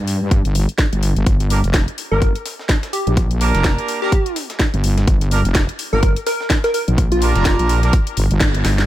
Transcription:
Already playing: G2
0.07 open hi-hat
0.31 kick, closed hi-hat
0.45 G1, closed hi-hat
0.55 open hi-hat
0.69 closed hi-hat
0.78 kick, snare, closed hi-hat
0.93 G1, closed hi-hat
1.03 open hi-hat
1.16 G1, closed hi-hat
1.26 G1, kick, closed hi-hat
1.40 closed hi-hat
1.50 A#3 D4 G4 A#4, closed hi-hat, open hi-hat
1.64 F1, closed hi-hat
1.74 kick, snare, closed hi-hat
1.88 closed hi-hat
1.98 closed hi-hat, open hi-hat
2.12 G1 A#3 D4 G4 A#4
2.22 kick, closed hi-hat
2.35 closed hi-hat
2.46 snare, closed hi-hat, open hi-hat
2.59 snare
2.69 kick, snare, closed hi-hat
2.83 snare, closed hi-hat
2.93 G4, closed hi-hat, open hi-hat
3.07 A#1, closed hi-hat
3.17 kick, closed hi-hat
3.31 closed hi-hat
3.41 A#3 D4 G4 A#4, closed hi-hat, open hi-hat
3.54 F1, snare, closed hi-hat
3.64 kick, snare, closed hi-hat
3.78 closed hi-hat
3.88 closed hi-hat, open hi-hat
4.02 A#3 D4 G4 A#4, snare
4.12 kick, closed hi-hat
4.26 closed hi-hat
4.36 snare, closed hi-hat, open hi-hat
4.50 snare, closed hi-hat
4.59 kick, snare, closed hi-hat
4.74 G1, closed hi-hat
4.84 closed hi-hat, open hi-hat
4.97 snare, closed hi-hat
5.07 G1, kick, closed hi-hat
5.21 closed hi-hat
5.31 A#3 D4 G4 A#4, closed hi-hat, open hi-hat
5.45 F1, closed hi-hat
5.55 kick, snare, closed hi-hat
5.69 closed hi-hat
5.79 closed hi-hat, open hi-hat
5.93 G1 A#3 D4 G4 A#4
6.03 kick, closed hi-hat
6.16 closed hi-hat
6.26 A#4, snare, closed hi-hat, open hi-hat
6.40 snare
6.50 kick, snare, closed hi-hat
6.64 A#4, snare, closed hi-hat
6.74 A#4, closed hi-hat, open hi-hat
6.88 A#1, closed hi-hat
6.98 kick, closed hi-hat
7.12 F4, closed hi-hat
7.22 A#3 D4 G4 A#4, closed hi-hat, open hi-hat
7.35 F1, snare, closed hi-hat
7.45 kick, snare, closed hi-hat
7.59 A#1, closed hi-hat
7.69 closed hi-hat, open hi-hat
7.83 A#3 D4 G4 A#4, snare, closed hi-hat
7.93 kick, closed hi-hat
8.07 closed hi-hat
8.17 G1, closed hi-hat, open hi-hat
8.31 G1, closed hi-hat
8.40 kick, snare, closed hi-hat
8.54 closed hi-hat
8.65 G1, snare, closed hi-hat, open hi-hat
8.78 snare, closed hi-hat

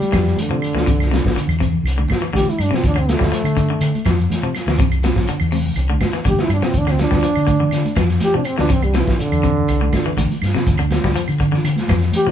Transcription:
Already playing: G3
0.01 closed hi-hat, high conga
0.12 F2 E3, kick, snare, closed hi-hat, high conga, claves
0.27 snare, closed hi-hat
0.37 closed hi-hat, high conga, low conga
0.41 D3
0.50 C3 F3
0.62 closed hi-hat, claves
0.75 D2 E3, snare
0.86 C2 C3, kick, closed hi-hat, high conga, low conga
1.00 snare, closed hi-hat, claves
1.11 C3, snare, closed hi-hat, high conga
1.25 A#1, kick, snare
1.35 D3, closed hi-hat, high conga
1.48 E2, closed hi-hat, claves
1.60 C3, kick, closed hi-hat
1.73 low conga
1.83 C2, closed hi-hat, high conga, claves
1.98 D3, high conga
2.08 kick, snare, closed hi-hat, high conga, claves
2.22 E3
2.33 A#1 D3 G4, snare, closed hi-hat, high conga, low conga
2.47 E4, muted fingered electric bass stroke, closed hi-hat, high conga
2.59 G2 D4, closed hi-hat, claves
2.71 C3, muted fingered electric bass stroke, snare, closed hi-hat
2.75 C4
2.84 D2 D4, kick, snare, closed hi-hat, high conga, low conga
2.96 D3 C4, closed hi-hat, claves
3.09 A3, snare, closed hi-hat, high conga
3.19 D2 G3, kick, snare
3.32 F3, snare, closed hi-hat
3.44 D3, closed hi-hat, claves
3.57 D3, kick, closed hi-hat
3.70 D3
3.81 D3, closed hi-hat, high conga, claves
3.95 closed hi-hat, high conga
4.05 F2 E3, kick, snare, closed hi-hat, high conga, claves
4.20 closed hi-hat
4.30 snare, closed hi-hat, high conga, low conga
4.43 C3 F3
4.55 snare, closed hi-hat, claves
4.67 D2 E3, snare
4.79 C2 C3, kick, closed hi-hat, high conga, low conga
4.92 closed hi-hat, claves
5.03 C3, snare, closed hi-hat, high conga
5.16 A#1, kick, snare
5.28 D3, closed hi-hat, high conga
5.40 E2, closed hi-hat, claves
5.52 C3, open hi-hat, high conga
5.66 low conga
5.76 C2, closed hi-hat, high conga, claves
5.90 D3, high conga
6.01 kick, snare, closed hi-hat, high conga, claves
6.13 E3, snare
6.25 A#1 D3 G4, kick, closed hi-hat, high conga, low conga
6.38 E4, muted fingered electric bass stroke, snare, closed hi-hat
6.49 G2, closed hi-hat, claves
6.53 D4
6.62 C3 C4, muted fingered electric bass stroke, snare, closed hi-hat
6.74 D2, kick, closed hi-hat, high conga, low conga
6.78 D4
6.87 D3 C4, snare, closed hi-hat, claves
6.99 D4, snare, closed hi-hat, high conga
7.11 D2 G3, kick, snare
7.23 F3, closed hi-hat, high conga
7.36 D3, closed hi-hat, claves
7.47 D3, kick, closed hi-hat, high conga
7.60 D3, low conga
7.71 D3, snare, closed hi-hat, claves
7.85 closed hi-hat, high conga
7.96 F2 E3, kick, snare, closed hi-hat, high conga, claves
8.10 snare, closed hi-hat
8.20 G4, snare, closed hi-hat, high conga, low conga
8.33 C3 F3 D4, high conga
8.44 C4, closed hi-hat, claves
8.58 D2 E3 D4, snare
8.69 C2 C3 C4, kick, closed hi-hat, high conga, low conga
8.83 G3, closed hi-hat, claves
8.94 C3 E3, snare, closed hi-hat, high conga
9.07 A#1, kick, snare
9.20 D3, closed hi-hat, high conga
9.32 E2, closed hi-hat, claves
9.43 C3, kick, closed hi-hat
9.57 low conga
9.68 C2, closed hi-hat, high conga, claves
9.81 D3, high conga
9.93 kick, snare, closed hi-hat, high conga, claves
10.06 E3
10.17 A#1 D3, closed hi-hat, high conga, low conga
10.30 muted fingered electric bass stroke, closed hi-hat, high conga
10.42 G2, snare, closed hi-hat, claves
10.54 C3, muted fingered electric bass stroke, snare, closed hi-hat
10.67 D2, kick, snare, closed hi-hat, high conga, low conga
10.78 D3, closed hi-hat, claves
10.91 snare, closed hi-hat, high conga
11.03 D2 G3, kick, snare
11.15 F3, closed hi-hat, high conga
11.28 D3, closed hi-hat, claves
11.40 D3, kick, closed hi-hat
11.52 D3, snare, low conga
11.63 D3, closed hi-hat, high conga, claves
11.76 snare, closed hi-hat, high conga
11.88 F2 E3, kick, snare, closed hi-hat, high conga, claves
12.02 snare, closed hi-hat
12.13 G4, closed hi-hat, high conga, low conga
12.27 C3 F3

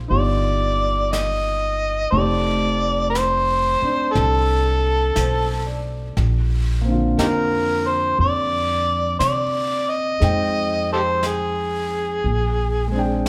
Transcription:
Already playing: A#3 C4 D#4 G4
0.08 G1 D#4 F4 G4 D5, brush sweep
1.12 D#5, brush sweep, snare, hi-hat pedal
2.11 F1 A3 C4 D5, brush sweep
2.15 D#4 G4
3.10 C5
3.15 brush sweep, snare, hi-hat pedal
3.81 C4 D4, muted upright bass stroke
4.13 C2 A4, brush sweep, snare
4.66 A4
5.16 B1 C5, brush sweep, snare, hi-hat pedal
5.66 D5
6.17 A#1, brush sweep, snare
6.82 A#3 C4
6.89 D3 F4
7.18 F2 D#4 G4 A#4, brush sweep, snare, hi-hat pedal
7.87 C5
8.19 F2 D5, brush sweep
9.19 C3 D5, brush sweep, snare, hi-hat pedal
9.89 D#5
10.20 F2 G#3 C4 D#4 G5, brush sweep, snare
10.93 G4 A4 C5
11.23 G#4, brush sweep, snare, hi-hat pedal
12.24 A#1, brush sweep
12.88 G#3
12.92 C4 D4
12.99 G5

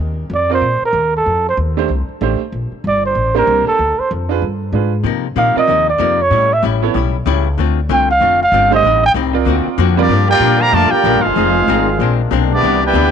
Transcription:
Already playing: D#2
0.30 F2
0.34 D5
0.50 C4 F4 A#4 C5 D5
0.61 A#2
0.82 A#4, muted upright bass stroke
0.93 D#2
1.17 A4
1.26 F2
1.49 C5
1.57 D#2
1.77 A3 D4 G4 C5
1.89 C2
2.08 muted upright bass stroke
2.21 A1 A3 D4 G4 C5
2.40 muted upright bass stroke
2.52 A#1
2.72 muted upright bass stroke
2.84 G1 D5
3.06 C5
3.15 A1
3.35 A#3 D4 G4 A#4 C5
3.47 C2
3.67 A4, muted upright bass stroke
3.79 D2
3.99 C5, muted upright bass stroke
4.11 F2
4.29 D4 F4 G#4 B4
4.42 G2
4.73 G#2 D4 F4 G#4 B4
5.04 C3 F3 A#3 D#4
5.36 A#2 C3 F3 A#3 D#4 F5
5.56 C4 F4 A#4 D5 D#5, muted upright bass stroke
5.67 D#2 C3 F3 A#3 D#4
5.90 D5
5.98 F2 C3 F3 A#3 D#4
6.22 C#5
6.31 A2 G3 C#4 E4
6.53 E5
6.62 A1 A2 G3 C#4 E4
6.82 B3 E4 A4 C#5
6.94 B1 A2 G3 C#4 E4
7.26 C#2 A2 G3 C#4 E4
7.58 D2 D3 A3 C4 F4
7.89 C2 D3 A3 C4 F4 G5
8.11 F5
8.20 F1 D3 A3 C4 F4
8.43 F5
8.52 G1 D3 A3 C4 F4
8.71 A3 D4 G4 C5 D#5
8.83 A1 A2 G3 C4
8.87 D#4
9.06 G5
9.14 C2 A2 G3 C4 D#4
9.33 C4 F4 A#4 D5
9.45 D2 D3 A#3 C4 F#4
9.66 muted upright bass stroke
9.78 F2 D3 A#3 C4 F#4
9.97 F3 G3 A#3 C4 D4 F4 G4 A#4 D5
10.09 G2 D3 F3 G3 A#3 D4 F4
10.28 A#3 D4 F4 G4 A#4 D5 G5
10.40 G2 A#2 F3 A#3 D4
10.59 D3 F3 A#3 G4 D5 F5 A#5
10.71 F2 G2 F3 A3 A#3 F4 A#4 D5 A5
10.75 D4
10.89 A#3 D4 F4 G4 A#4 D5 G5, muted upright bass stroke
11.04 A#1 G2 F3 A#3 D4
11.14 G1
11.21 G#3 C4 D#4 F4 G#4 C5 F5
11.25 F1
11.35 F1 D#3 F3 G#3 C4 D#4 G#4
11.68 G#1 F3 C4 D#4 G#4
11.99 A#1 A#2 G#3 A#3 C4 D4
12.31 B1 A#2 G#3 C4 D4
12.51 G3 B3 D4 E4 G4 D5
12.62 C2 B2 C3 E3 B3 D4
12.82 B3 E4 G4 B4 D5 G5
12.93 D2 C3 E3 B3 D4

